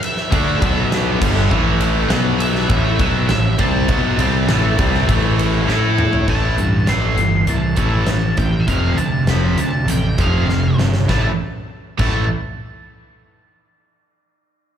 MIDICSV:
0, 0, Header, 1, 5, 480
1, 0, Start_track
1, 0, Key_signature, 0, "minor"
1, 0, Tempo, 596421
1, 1222, Time_signature, 4, 2, 24, 8
1, 6024, Tempo, 601805
1, 11838, End_track
2, 0, Start_track
2, 0, Title_t, "Lead electric guitar"
2, 0, Program_c, 0, 29
2, 35, Note_on_c, 0, 76, 85
2, 956, Note_off_c, 0, 76, 0
2, 1677, Note_on_c, 0, 78, 86
2, 1745, Note_off_c, 0, 78, 0
2, 1922, Note_on_c, 0, 76, 91
2, 2628, Note_off_c, 0, 76, 0
2, 2637, Note_on_c, 0, 76, 85
2, 2895, Note_off_c, 0, 76, 0
2, 2898, Note_on_c, 0, 81, 126
2, 4546, Note_off_c, 0, 81, 0
2, 5067, Note_on_c, 0, 81, 93
2, 5541, Note_on_c, 0, 84, 81
2, 5559, Note_off_c, 0, 81, 0
2, 6030, Note_on_c, 0, 81, 93
2, 6038, Note_off_c, 0, 84, 0
2, 6261, Note_off_c, 0, 81, 0
2, 6271, Note_on_c, 0, 81, 111
2, 6736, Note_off_c, 0, 81, 0
2, 6740, Note_on_c, 0, 79, 85
2, 6912, Note_on_c, 0, 76, 66
2, 6930, Note_off_c, 0, 79, 0
2, 6968, Note_off_c, 0, 76, 0
2, 6971, Note_on_c, 0, 77, 99
2, 7198, Note_off_c, 0, 77, 0
2, 7212, Note_on_c, 0, 81, 84
2, 7463, Note_off_c, 0, 81, 0
2, 7467, Note_on_c, 0, 83, 84
2, 7704, Note_on_c, 0, 81, 91
2, 7710, Note_off_c, 0, 83, 0
2, 7949, Note_off_c, 0, 81, 0
2, 7952, Note_on_c, 0, 79, 84
2, 8193, Note_off_c, 0, 79, 0
2, 8195, Note_on_c, 0, 77, 77
2, 8635, Note_off_c, 0, 77, 0
2, 8905, Note_on_c, 0, 81, 75
2, 9036, Note_off_c, 0, 81, 0
2, 9628, Note_on_c, 0, 81, 88
2, 9848, Note_off_c, 0, 81, 0
2, 11838, End_track
3, 0, Start_track
3, 0, Title_t, "Overdriven electric guitar"
3, 0, Program_c, 1, 29
3, 245, Note_on_c, 1, 50, 110
3, 249, Note_on_c, 1, 57, 127
3, 258, Note_on_c, 1, 62, 121
3, 487, Note_off_c, 1, 50, 0
3, 489, Note_off_c, 1, 57, 0
3, 493, Note_off_c, 1, 62, 0
3, 497, Note_on_c, 1, 47, 96
3, 504, Note_on_c, 1, 54, 105
3, 510, Note_on_c, 1, 59, 106
3, 972, Note_off_c, 1, 47, 0
3, 976, Note_off_c, 1, 54, 0
3, 979, Note_off_c, 1, 59, 0
3, 980, Note_on_c, 1, 43, 99
3, 984, Note_on_c, 1, 50, 102
3, 989, Note_on_c, 1, 55, 104
3, 1214, Note_off_c, 1, 43, 0
3, 1214, Note_off_c, 1, 50, 0
3, 1217, Note_on_c, 1, 45, 99
3, 1218, Note_off_c, 1, 55, 0
3, 1225, Note_on_c, 1, 52, 107
3, 1227, Note_on_c, 1, 57, 113
3, 1691, Note_off_c, 1, 45, 0
3, 1695, Note_off_c, 1, 52, 0
3, 1696, Note_off_c, 1, 57, 0
3, 1703, Note_on_c, 1, 47, 103
3, 1707, Note_on_c, 1, 54, 114
3, 1710, Note_on_c, 1, 59, 124
3, 2174, Note_off_c, 1, 47, 0
3, 2176, Note_off_c, 1, 54, 0
3, 2177, Note_off_c, 1, 59, 0
3, 2177, Note_on_c, 1, 45, 127
3, 2181, Note_on_c, 1, 52, 122
3, 2188, Note_on_c, 1, 57, 127
3, 2408, Note_off_c, 1, 45, 0
3, 2411, Note_on_c, 1, 47, 102
3, 2412, Note_off_c, 1, 52, 0
3, 2415, Note_on_c, 1, 54, 104
3, 2416, Note_off_c, 1, 57, 0
3, 2419, Note_on_c, 1, 59, 103
3, 2648, Note_off_c, 1, 47, 0
3, 2649, Note_off_c, 1, 54, 0
3, 2652, Note_off_c, 1, 59, 0
3, 2659, Note_on_c, 1, 45, 63
3, 2662, Note_on_c, 1, 52, 78
3, 2850, Note_off_c, 1, 45, 0
3, 2852, Note_off_c, 1, 52, 0
3, 2884, Note_on_c, 1, 48, 99
3, 2889, Note_on_c, 1, 55, 93
3, 2897, Note_on_c, 1, 60, 100
3, 3115, Note_off_c, 1, 48, 0
3, 3118, Note_on_c, 1, 47, 96
3, 3125, Note_off_c, 1, 55, 0
3, 3128, Note_off_c, 1, 60, 0
3, 3128, Note_on_c, 1, 54, 92
3, 3131, Note_on_c, 1, 59, 114
3, 3355, Note_off_c, 1, 47, 0
3, 3358, Note_on_c, 1, 48, 98
3, 3364, Note_off_c, 1, 54, 0
3, 3367, Note_off_c, 1, 59, 0
3, 3367, Note_on_c, 1, 55, 107
3, 3371, Note_on_c, 1, 60, 103
3, 3600, Note_off_c, 1, 48, 0
3, 3603, Note_on_c, 1, 45, 99
3, 3605, Note_off_c, 1, 55, 0
3, 3607, Note_off_c, 1, 60, 0
3, 3610, Note_on_c, 1, 52, 100
3, 3611, Note_on_c, 1, 57, 99
3, 3843, Note_off_c, 1, 45, 0
3, 3847, Note_off_c, 1, 52, 0
3, 3847, Note_off_c, 1, 57, 0
3, 3850, Note_on_c, 1, 48, 99
3, 3853, Note_on_c, 1, 55, 96
3, 3858, Note_on_c, 1, 60, 118
3, 4083, Note_off_c, 1, 48, 0
3, 4085, Note_off_c, 1, 55, 0
3, 4086, Note_on_c, 1, 45, 114
3, 4089, Note_on_c, 1, 52, 112
3, 4091, Note_off_c, 1, 60, 0
3, 4095, Note_on_c, 1, 57, 127
3, 4557, Note_off_c, 1, 57, 0
3, 4563, Note_off_c, 1, 52, 0
3, 4565, Note_off_c, 1, 45, 0
3, 4566, Note_on_c, 1, 57, 93
3, 4568, Note_on_c, 1, 64, 114
3, 4577, Note_on_c, 1, 69, 111
3, 5046, Note_off_c, 1, 57, 0
3, 5047, Note_off_c, 1, 64, 0
3, 5047, Note_on_c, 1, 45, 81
3, 5052, Note_off_c, 1, 69, 0
3, 5053, Note_on_c, 1, 52, 81
3, 5058, Note_on_c, 1, 57, 79
3, 5280, Note_off_c, 1, 45, 0
3, 5283, Note_off_c, 1, 52, 0
3, 5285, Note_off_c, 1, 57, 0
3, 5302, Note_on_c, 1, 45, 74
3, 5302, Note_on_c, 1, 52, 70
3, 5518, Note_off_c, 1, 45, 0
3, 5518, Note_off_c, 1, 52, 0
3, 5537, Note_on_c, 1, 45, 82
3, 5546, Note_on_c, 1, 52, 95
3, 5547, Note_on_c, 1, 57, 111
3, 5766, Note_off_c, 1, 45, 0
3, 5770, Note_off_c, 1, 52, 0
3, 5771, Note_off_c, 1, 57, 0
3, 5788, Note_on_c, 1, 45, 74
3, 5792, Note_on_c, 1, 52, 77
3, 6002, Note_off_c, 1, 45, 0
3, 6004, Note_off_c, 1, 52, 0
3, 6018, Note_on_c, 1, 45, 90
3, 6024, Note_on_c, 1, 52, 89
3, 6236, Note_off_c, 1, 45, 0
3, 6239, Note_off_c, 1, 52, 0
3, 6258, Note_on_c, 1, 45, 96
3, 6262, Note_on_c, 1, 52, 99
3, 6268, Note_on_c, 1, 57, 92
3, 6485, Note_off_c, 1, 45, 0
3, 6487, Note_off_c, 1, 52, 0
3, 6490, Note_off_c, 1, 57, 0
3, 6509, Note_on_c, 1, 45, 80
3, 6512, Note_on_c, 1, 52, 93
3, 6721, Note_off_c, 1, 45, 0
3, 6723, Note_off_c, 1, 52, 0
3, 6743, Note_on_c, 1, 52, 75
3, 6745, Note_on_c, 1, 45, 71
3, 6958, Note_off_c, 1, 52, 0
3, 6959, Note_off_c, 1, 45, 0
3, 6973, Note_on_c, 1, 41, 80
3, 6981, Note_on_c, 1, 48, 80
3, 6988, Note_on_c, 1, 53, 100
3, 7202, Note_off_c, 1, 41, 0
3, 7206, Note_off_c, 1, 48, 0
3, 7210, Note_off_c, 1, 53, 0
3, 7221, Note_on_c, 1, 48, 75
3, 7222, Note_on_c, 1, 41, 70
3, 7436, Note_off_c, 1, 48, 0
3, 7437, Note_off_c, 1, 41, 0
3, 7456, Note_on_c, 1, 41, 84
3, 7468, Note_on_c, 1, 48, 83
3, 7472, Note_on_c, 1, 53, 100
3, 7684, Note_off_c, 1, 41, 0
3, 7689, Note_off_c, 1, 48, 0
3, 7691, Note_off_c, 1, 53, 0
3, 7698, Note_on_c, 1, 41, 66
3, 7701, Note_on_c, 1, 48, 78
3, 7915, Note_off_c, 1, 41, 0
3, 7916, Note_off_c, 1, 48, 0
3, 7946, Note_on_c, 1, 41, 91
3, 7950, Note_on_c, 1, 48, 91
3, 8159, Note_off_c, 1, 41, 0
3, 8161, Note_off_c, 1, 48, 0
3, 8188, Note_on_c, 1, 41, 90
3, 8190, Note_on_c, 1, 48, 93
3, 8196, Note_on_c, 1, 53, 101
3, 8409, Note_off_c, 1, 41, 0
3, 8410, Note_off_c, 1, 48, 0
3, 8413, Note_off_c, 1, 53, 0
3, 8432, Note_on_c, 1, 41, 66
3, 8433, Note_on_c, 1, 48, 86
3, 8642, Note_off_c, 1, 41, 0
3, 8642, Note_off_c, 1, 48, 0
3, 8673, Note_on_c, 1, 48, 80
3, 8674, Note_on_c, 1, 41, 73
3, 8882, Note_off_c, 1, 48, 0
3, 8883, Note_off_c, 1, 41, 0
3, 8892, Note_on_c, 1, 45, 88
3, 8897, Note_on_c, 1, 52, 83
3, 8907, Note_on_c, 1, 57, 100
3, 9040, Note_off_c, 1, 45, 0
3, 9043, Note_off_c, 1, 52, 0
3, 9047, Note_off_c, 1, 57, 0
3, 9612, Note_on_c, 1, 45, 105
3, 9620, Note_on_c, 1, 52, 97
3, 9621, Note_on_c, 1, 57, 108
3, 9808, Note_off_c, 1, 45, 0
3, 9812, Note_off_c, 1, 52, 0
3, 9813, Note_off_c, 1, 57, 0
3, 11838, End_track
4, 0, Start_track
4, 0, Title_t, "Picked electric bass"
4, 0, Program_c, 2, 34
4, 259, Note_on_c, 2, 38, 99
4, 484, Note_off_c, 2, 38, 0
4, 492, Note_on_c, 2, 35, 96
4, 945, Note_off_c, 2, 35, 0
4, 974, Note_on_c, 2, 31, 101
4, 1201, Note_off_c, 2, 31, 0
4, 1216, Note_on_c, 2, 33, 97
4, 1666, Note_off_c, 2, 33, 0
4, 1678, Note_on_c, 2, 35, 102
4, 2136, Note_off_c, 2, 35, 0
4, 2162, Note_on_c, 2, 33, 113
4, 2393, Note_off_c, 2, 33, 0
4, 2405, Note_on_c, 2, 35, 106
4, 2635, Note_off_c, 2, 35, 0
4, 2641, Note_on_c, 2, 33, 77
4, 2872, Note_off_c, 2, 33, 0
4, 2892, Note_on_c, 2, 36, 99
4, 3118, Note_off_c, 2, 36, 0
4, 3125, Note_on_c, 2, 35, 93
4, 3354, Note_off_c, 2, 35, 0
4, 3366, Note_on_c, 2, 36, 96
4, 3595, Note_off_c, 2, 36, 0
4, 3599, Note_on_c, 2, 33, 100
4, 3831, Note_off_c, 2, 33, 0
4, 3850, Note_on_c, 2, 36, 105
4, 4077, Note_off_c, 2, 36, 0
4, 4088, Note_on_c, 2, 33, 105
4, 4541, Note_off_c, 2, 33, 0
4, 4574, Note_on_c, 2, 45, 90
4, 5025, Note_off_c, 2, 45, 0
4, 5053, Note_on_c, 2, 33, 93
4, 5269, Note_off_c, 2, 33, 0
4, 5293, Note_on_c, 2, 43, 80
4, 5509, Note_off_c, 2, 43, 0
4, 5536, Note_on_c, 2, 33, 76
4, 5751, Note_off_c, 2, 33, 0
4, 5758, Note_on_c, 2, 31, 83
4, 5982, Note_off_c, 2, 31, 0
4, 6010, Note_on_c, 2, 36, 89
4, 6227, Note_off_c, 2, 36, 0
4, 6252, Note_on_c, 2, 33, 81
4, 6468, Note_off_c, 2, 33, 0
4, 6489, Note_on_c, 2, 33, 88
4, 6706, Note_off_c, 2, 33, 0
4, 6730, Note_on_c, 2, 33, 90
4, 6946, Note_off_c, 2, 33, 0
4, 6970, Note_on_c, 2, 29, 79
4, 7177, Note_off_c, 2, 29, 0
4, 7182, Note_on_c, 2, 38, 90
4, 7411, Note_off_c, 2, 38, 0
4, 7433, Note_on_c, 2, 29, 88
4, 7657, Note_off_c, 2, 29, 0
4, 7671, Note_on_c, 2, 38, 86
4, 7895, Note_off_c, 2, 38, 0
4, 7910, Note_on_c, 2, 33, 103
4, 8135, Note_off_c, 2, 33, 0
4, 8177, Note_on_c, 2, 29, 86
4, 8390, Note_off_c, 2, 29, 0
4, 8399, Note_on_c, 2, 29, 78
4, 8620, Note_off_c, 2, 29, 0
4, 8644, Note_on_c, 2, 31, 84
4, 8863, Note_off_c, 2, 31, 0
4, 8897, Note_on_c, 2, 33, 87
4, 9032, Note_off_c, 2, 33, 0
4, 9614, Note_on_c, 2, 33, 106
4, 9840, Note_off_c, 2, 33, 0
4, 11838, End_track
5, 0, Start_track
5, 0, Title_t, "Drums"
5, 22, Note_on_c, 9, 51, 103
5, 103, Note_off_c, 9, 51, 0
5, 137, Note_on_c, 9, 38, 39
5, 217, Note_off_c, 9, 38, 0
5, 259, Note_on_c, 9, 51, 125
5, 260, Note_on_c, 9, 36, 117
5, 340, Note_off_c, 9, 36, 0
5, 340, Note_off_c, 9, 51, 0
5, 499, Note_on_c, 9, 36, 123
5, 501, Note_on_c, 9, 51, 93
5, 580, Note_off_c, 9, 36, 0
5, 581, Note_off_c, 9, 51, 0
5, 742, Note_on_c, 9, 38, 110
5, 742, Note_on_c, 9, 51, 109
5, 822, Note_off_c, 9, 38, 0
5, 822, Note_off_c, 9, 51, 0
5, 979, Note_on_c, 9, 36, 122
5, 985, Note_on_c, 9, 49, 120
5, 1060, Note_off_c, 9, 36, 0
5, 1065, Note_off_c, 9, 49, 0
5, 1217, Note_on_c, 9, 36, 97
5, 1297, Note_off_c, 9, 36, 0
5, 1453, Note_on_c, 9, 51, 93
5, 1533, Note_off_c, 9, 51, 0
5, 1692, Note_on_c, 9, 38, 117
5, 1692, Note_on_c, 9, 51, 113
5, 1773, Note_off_c, 9, 38, 0
5, 1773, Note_off_c, 9, 51, 0
5, 1934, Note_on_c, 9, 51, 97
5, 2014, Note_off_c, 9, 51, 0
5, 2055, Note_on_c, 9, 38, 41
5, 2136, Note_off_c, 9, 38, 0
5, 2170, Note_on_c, 9, 36, 123
5, 2171, Note_on_c, 9, 51, 115
5, 2251, Note_off_c, 9, 36, 0
5, 2251, Note_off_c, 9, 51, 0
5, 2410, Note_on_c, 9, 36, 119
5, 2412, Note_on_c, 9, 51, 86
5, 2491, Note_off_c, 9, 36, 0
5, 2492, Note_off_c, 9, 51, 0
5, 2647, Note_on_c, 9, 38, 117
5, 2647, Note_on_c, 9, 51, 102
5, 2728, Note_off_c, 9, 38, 0
5, 2728, Note_off_c, 9, 51, 0
5, 2885, Note_on_c, 9, 51, 83
5, 2891, Note_on_c, 9, 36, 116
5, 2966, Note_off_c, 9, 51, 0
5, 2971, Note_off_c, 9, 36, 0
5, 3126, Note_on_c, 9, 51, 108
5, 3130, Note_on_c, 9, 36, 104
5, 3206, Note_off_c, 9, 51, 0
5, 3211, Note_off_c, 9, 36, 0
5, 3370, Note_on_c, 9, 51, 93
5, 3450, Note_off_c, 9, 51, 0
5, 3610, Note_on_c, 9, 38, 106
5, 3610, Note_on_c, 9, 51, 112
5, 3691, Note_off_c, 9, 38, 0
5, 3691, Note_off_c, 9, 51, 0
5, 3851, Note_on_c, 9, 51, 91
5, 3854, Note_on_c, 9, 36, 127
5, 3932, Note_off_c, 9, 51, 0
5, 3935, Note_off_c, 9, 36, 0
5, 3978, Note_on_c, 9, 38, 36
5, 4058, Note_off_c, 9, 38, 0
5, 4095, Note_on_c, 9, 36, 120
5, 4096, Note_on_c, 9, 51, 127
5, 4175, Note_off_c, 9, 36, 0
5, 4176, Note_off_c, 9, 51, 0
5, 4340, Note_on_c, 9, 51, 90
5, 4420, Note_off_c, 9, 51, 0
5, 4576, Note_on_c, 9, 38, 70
5, 4656, Note_off_c, 9, 38, 0
5, 4816, Note_on_c, 9, 45, 105
5, 4897, Note_off_c, 9, 45, 0
5, 4933, Note_on_c, 9, 43, 100
5, 5014, Note_off_c, 9, 43, 0
5, 5053, Note_on_c, 9, 57, 96
5, 5054, Note_on_c, 9, 36, 97
5, 5133, Note_off_c, 9, 57, 0
5, 5134, Note_off_c, 9, 36, 0
5, 5296, Note_on_c, 9, 42, 65
5, 5377, Note_off_c, 9, 42, 0
5, 5531, Note_on_c, 9, 38, 105
5, 5531, Note_on_c, 9, 42, 85
5, 5612, Note_off_c, 9, 38, 0
5, 5612, Note_off_c, 9, 42, 0
5, 5775, Note_on_c, 9, 42, 67
5, 5856, Note_off_c, 9, 42, 0
5, 6013, Note_on_c, 9, 42, 86
5, 6093, Note_off_c, 9, 42, 0
5, 6247, Note_on_c, 9, 42, 69
5, 6255, Note_on_c, 9, 36, 88
5, 6326, Note_off_c, 9, 42, 0
5, 6334, Note_off_c, 9, 36, 0
5, 6487, Note_on_c, 9, 38, 95
5, 6487, Note_on_c, 9, 42, 78
5, 6567, Note_off_c, 9, 38, 0
5, 6567, Note_off_c, 9, 42, 0
5, 6730, Note_on_c, 9, 42, 75
5, 6735, Note_on_c, 9, 36, 92
5, 6810, Note_off_c, 9, 42, 0
5, 6815, Note_off_c, 9, 36, 0
5, 6975, Note_on_c, 9, 42, 87
5, 6976, Note_on_c, 9, 36, 102
5, 7055, Note_off_c, 9, 42, 0
5, 7056, Note_off_c, 9, 36, 0
5, 7215, Note_on_c, 9, 42, 69
5, 7294, Note_off_c, 9, 42, 0
5, 7450, Note_on_c, 9, 38, 103
5, 7450, Note_on_c, 9, 42, 86
5, 7530, Note_off_c, 9, 38, 0
5, 7530, Note_off_c, 9, 42, 0
5, 7692, Note_on_c, 9, 42, 88
5, 7771, Note_off_c, 9, 42, 0
5, 7935, Note_on_c, 9, 42, 115
5, 8015, Note_off_c, 9, 42, 0
5, 8175, Note_on_c, 9, 42, 75
5, 8178, Note_on_c, 9, 36, 91
5, 8254, Note_off_c, 9, 42, 0
5, 8258, Note_off_c, 9, 36, 0
5, 8424, Note_on_c, 9, 38, 58
5, 8504, Note_off_c, 9, 38, 0
5, 8664, Note_on_c, 9, 38, 97
5, 8743, Note_off_c, 9, 38, 0
5, 8776, Note_on_c, 9, 38, 84
5, 8856, Note_off_c, 9, 38, 0
5, 8901, Note_on_c, 9, 36, 96
5, 8901, Note_on_c, 9, 38, 85
5, 8980, Note_off_c, 9, 36, 0
5, 8980, Note_off_c, 9, 38, 0
5, 9619, Note_on_c, 9, 57, 100
5, 9620, Note_on_c, 9, 36, 109
5, 9698, Note_off_c, 9, 57, 0
5, 9700, Note_off_c, 9, 36, 0
5, 11838, End_track
0, 0, End_of_file